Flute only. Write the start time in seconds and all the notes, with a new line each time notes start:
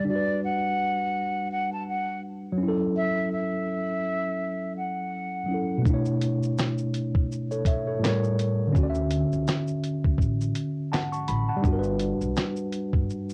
0.08 D5
0.44 F#5
1.52 F#5
1.73 A5
1.89 F#5
2.97 E5
3.33 E5
4.77 F#5